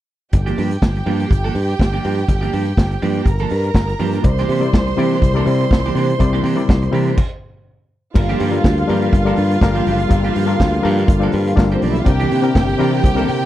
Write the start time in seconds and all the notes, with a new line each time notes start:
0.33 G1 G4 G5, muted clean electric guitar stroke, kick, closed hi-hat
0.46 F3 A#3 D4 G4, closed hi-hat
0.58 G2 F3 A#3 D4 G4, open hi-hat
0.71 muted clean electric guitar stroke, closed hi-hat
0.82 G1, muted clean electric guitar stroke, kick, snare
0.96 muted clean electric guitar stroke, closed hi-hat
1.06 G2 F3 A#3 D4 G4, open hi-hat
1.20 F3 A#3 D4 G4, closed hi-hat
1.31 G1, muted clean electric guitar stroke, kick, closed hi-hat
1.44 F3 A#3 D4 A4, closed hi-hat
1.55 G2, muted clean electric guitar stroke, open hi-hat
1.68 muted clean electric guitar stroke, closed hi-hat
1.79 G1, muted clean electric guitar stroke, kick, snare
1.93 F3 A#3 D4 G4, closed hi-hat
2.04 G2 F3 A#3 D4 G4, open hi-hat
2.18 muted clean electric guitar stroke, closed hi-hat
2.28 G1, muted clean electric guitar stroke, kick, closed hi-hat
2.41 F3 A#3 D4 G4, closed hi-hat
2.52 G2 F3 A#3 D4 G4, open hi-hat
2.66 muted clean electric guitar stroke, closed hi-hat
2.77 G1, muted clean electric guitar stroke, kick, snare
2.91 muted clean electric guitar stroke, closed hi-hat
3.02 G2 F3 A#3 D4 G4, open hi-hat
3.15 F3 A#3 D4 G4, closed hi-hat
3.26 G1 A#4 A#5, muted clean electric guitar stroke, kick, closed hi-hat
3.39 F3 A#3 D4 A4, closed hi-hat
3.50 G2, muted clean electric guitar stroke, open hi-hat
3.64 muted clean electric guitar stroke, closed hi-hat
3.74 G1, muted clean electric guitar stroke, kick, snare
3.88 muted clean electric guitar stroke, closed hi-hat
3.99 G2 F3 A#3 D4 G4, open hi-hat
4.13 F3 A#3 D4 G4, closed hi-hat
4.22 C2 C3 G3 E4 A#4 C5 D5 C6, muted clean electric guitar stroke, kick, closed hi-hat
4.38 E3 A#3 D4 G4, snare, closed hi-hat
4.49 C3 E3 A#3 D4 G4, open hi-hat
4.60 C3 G3 E4 A#4 D5, muted clean electric guitar stroke, closed hi-hat
4.73 C2, muted clean electric guitar stroke, kick, snare
4.87 muted clean electric guitar stroke, closed hi-hat
4.97 C3 E3 G3 A#3 D4 E4 G4 A#4 D5, open hi-hat
5.11 E3 A#3 D4 G4, closed hi-hat
5.22 C2, muted clean electric guitar stroke, kick, closed hi-hat
5.34 C3 G3 A#3 D4 E4 A4 A#4 D5, closed hi-hat
5.38 E3
5.45 C3 G3 E4 A#4 E5, muted clean electric guitar stroke, open hi-hat
5.61 muted clean electric guitar stroke, closed hi-hat
5.71 C2, muted clean electric guitar stroke, kick, snare
5.85 E3 A#3 D4 G4, closed hi-hat
5.95 C3 E3 A#3 D4 G4, open hi-hat
6.09 muted clean electric guitar stroke, closed hi-hat
6.19 C2 C3 G3 E4 A#4 D5, muted clean electric guitar stroke, kick, closed hi-hat
6.33 E3 A#3 D4 G4, closed hi-hat
6.44 C3 E3 A#3 D4 G4, open hi-hat
6.56 C3 G3 E4 A#4 D5, muted clean electric guitar stroke, closed hi-hat
6.69 C2, muted clean electric guitar stroke, kick, snare
6.82 muted clean electric guitar stroke, closed hi-hat
6.91 C3 E3 G3 A#3 D4 E4 G4 A#4 C5, open hi-hat
7.07 E3 A#3 D4 G4, closed hi-hat
7.17 kick, crash
8.14 G1 D3 G3 A#3 D4 F4 A4 A#4 F5, muted clean electric guitar stroke, kick, crash
8.29 F3 A#3 D4 G4, closed hi-hat
8.40 G2 F3 A#3 D4 G4, open hi-hat
8.51 G3 D4 F4 A4 A#4, muted clean electric guitar stroke, closed hi-hat
8.64 D2, muted clean electric guitar stroke, kick, snare
8.78 muted clean electric guitar stroke, closed hi-hat
8.87 G2 F3 G3 A#3 D4 F4 G4 A4 A#4, open hi-hat
9.02 F3 A#3 D4 G4, closed hi-hat
9.13 G1, muted clean electric guitar stroke, kick, closed hi-hat
9.25 F3 G3 A#3 D4 F4 A4 A#4, closed hi-hat
9.37 G2, muted clean electric guitar stroke, open hi-hat
9.51 muted clean electric guitar stroke, closed hi-hat
9.61 G1 G3 D4 F4 A4 A#4, muted clean electric guitar stroke, kick, snare
9.75 F3 A#3 D4 G4, closed hi-hat
9.87 F#1 F3 A#3 D4 G4, open hi-hat
10.00 muted clean electric guitar stroke, closed hi-hat
10.09 G1 G3 D4 F4 G4 A4 A#4, muted clean electric guitar stroke, kick, closed hi-hat
10.24 F3 A#3 D4 G4, closed hi-hat
10.35 G2 F3 A#3 D4 G4, open hi-hat
10.46 G3 D4 F4 A4 A#4, closed hi-hat
10.50 muted clean electric guitar stroke
10.60 D2, muted clean electric guitar stroke, kick, snare
10.74 muted clean electric guitar stroke, closed hi-hat
10.82 G2 F3 G3 A#3 D4 F4 A4 A#4, open hi-hat
10.86 D4 G4
10.98 F3 A#3 D4 G4, closed hi-hat
11.08 G1, muted clean electric guitar stroke, kick, closed hi-hat
11.20 G3 D4 F4 A4 C5, closed hi-hat
11.24 F3 A#3
11.32 G2, muted clean electric guitar stroke, open hi-hat
11.47 muted clean electric guitar stroke, closed hi-hat
11.55 G1 G3 D4 F4 A4 A#4, kick, snare
11.59 muted clean electric guitar stroke
11.71 F3 A#3 C4 D4 G4 C5, closed hi-hat
11.82 B1 F3 A#3 D4 G4 D5, open hi-hat
11.91 E4 E5
11.95 F4, muted clean electric guitar stroke, closed hi-hat
11.99 F5
12.04 C2 C3 D3 C4 D4 E4 G4 A#4 G5, muted clean electric guitar stroke, kick, closed hi-hat
12.20 E3 A#3 D4 G4, closed hi-hat
12.31 C3 E3 A#3 D4 G4, open hi-hat
12.42 C3 C4 D4 E4 A#4, muted clean electric guitar stroke, closed hi-hat
12.55 G1, muted clean electric guitar stroke, kick, snare
12.69 muted clean electric guitar stroke, closed hi-hat
12.78 C3 E3 A#3 C4 D4 E4 G4 A#4, open hi-hat
12.92 E3 A#3 D4 G4, closed hi-hat
13.04 C2, muted clean electric guitar stroke, kick, closed hi-hat
13.15 C3 E3 A#3 C4 D4 E4 A4 A#4, closed hi-hat
13.28 C3, muted clean electric guitar stroke, open hi-hat